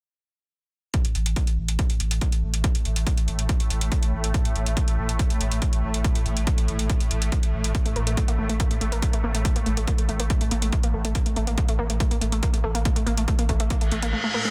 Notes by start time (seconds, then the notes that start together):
0.94 A2 A3, kick, closed hi-hat
1.05 A1, closed hi-hat
1.15 A1, closed hi-hat
1.26 A1, closed hi-hat
1.36 kick, closed hi-hat
1.47 A1, closed hi-hat
1.58 A1
1.68 A1, closed hi-hat
1.79 kick, closed hi-hat
1.90 A1, closed hi-hat
2.00 A1, closed hi-hat
2.11 A1, closed hi-hat
2.21 kick, closed hi-hat
2.32 A1, closed hi-hat
2.43 A1
2.54 A1, closed hi-hat
2.64 kick, closed hi-hat
2.75 A1, closed hi-hat
2.85 A1, closed hi-hat
2.96 A1, closed hi-hat
3.07 kick, closed hi-hat
3.17 A1, closed hi-hat
3.28 A1, closed hi-hat
3.39 A1, closed hi-hat
3.49 kick, closed hi-hat
3.60 A1, closed hi-hat
3.70 A1, closed hi-hat
3.81 A1, closed hi-hat
3.92 kick, closed hi-hat
4.03 A1, closed hi-hat
4.13 A1
4.24 A1, closed hi-hat
4.34 kick, closed hi-hat
4.45 A1, closed hi-hat
4.56 A1, closed hi-hat
4.66 A1, closed hi-hat
4.77 kick, closed hi-hat
4.88 A1, closed hi-hat
4.98 A1
5.09 A1, closed hi-hat
5.19 kick, closed hi-hat
5.30 A1, closed hi-hat
5.41 A1, closed hi-hat
5.52 A1, closed hi-hat
5.62 kick, closed hi-hat
5.73 A1, closed hi-hat
5.83 A1
5.94 A1, closed hi-hat
6.04 kick, closed hi-hat
6.15 A1, closed hi-hat
6.26 A1, closed hi-hat
6.37 A1, closed hi-hat
6.47 kick, closed hi-hat
6.58 A1, closed hi-hat
6.68 A1, closed hi-hat
6.79 A1, closed hi-hat
6.90 kick, closed hi-hat
7.00 A1, closed hi-hat
7.11 A1, closed hi-hat
7.22 A1, closed hi-hat
7.32 kick, closed hi-hat
7.43 A1, closed hi-hat
7.53 A1
7.64 A1, closed hi-hat
7.75 A3, kick, closed hi-hat
7.86 A1 A3, closed hi-hat
7.96 A1 A#3, closed hi-hat
8.07 A1 A3, closed hi-hat
8.17 A3, kick, closed hi-hat
8.28 A1 A#3, closed hi-hat
8.38 A1 A3
8.49 A1 A3, closed hi-hat
8.60 A#3, kick, closed hi-hat
8.71 A1 A3, closed hi-hat
8.81 A1 A3, closed hi-hat
8.92 A1 A#3, closed hi-hat
9.02 A3, kick, closed hi-hat
9.13 A1 A3, closed hi-hat
9.24 A1 A#3
9.35 A1 A3, closed hi-hat
9.45 A3, kick, closed hi-hat
9.56 A1 A#3, closed hi-hat
9.66 A1 A3, closed hi-hat
9.77 A1 A3, closed hi-hat
9.87 A#3, kick, closed hi-hat
9.98 A1 A3, closed hi-hat
10.09 A1 A3, closed hi-hat
10.20 A1 A#3, closed hi-hat
10.30 A3, kick, closed hi-hat
10.41 A1 A3, closed hi-hat
10.51 A1 A#3, closed hi-hat
10.62 A1 A3, closed hi-hat
10.72 A3, kick, closed hi-hat
10.83 A1 A#3, closed hi-hat
10.94 A1 A3
11.05 A1 A3, closed hi-hat
11.15 A#3, kick, closed hi-hat
11.26 A1 A3, closed hi-hat
11.36 A1 A3, closed hi-hat
11.47 A1 A#3, closed hi-hat
11.58 A3, kick, closed hi-hat
11.68 A1 A3, closed hi-hat
11.79 A1 A#3
11.90 A1 A3, closed hi-hat
12.00 A3, kick, closed hi-hat
12.11 A1 A#3, closed hi-hat
12.21 A1 A3, closed hi-hat
12.32 A1 A3, closed hi-hat
12.43 A#3, kick, closed hi-hat
12.53 A1 A3, closed hi-hat
12.64 A1 A3
12.75 A1 A#3, closed hi-hat
12.85 A3, kick, closed hi-hat
12.96 A1 A3, closed hi-hat
13.06 A1 A#3, closed hi-hat
13.17 A1 A3, closed hi-hat
13.28 A3, kick, closed hi-hat
13.39 A1 A#3, closed hi-hat
13.49 A1 A3, kick, closed hi-hat
13.60 A1 A3, closed hi-hat
13.70 A#3, kick, closed hi-hat, reverse cymbal
13.81 A1 A3, closed hi-hat
13.92 A1 A3, closed hi-hat
14.02 A1 A#3, closed hi-hat
14.13 A3
14.24 A3
14.34 A#3
14.45 A3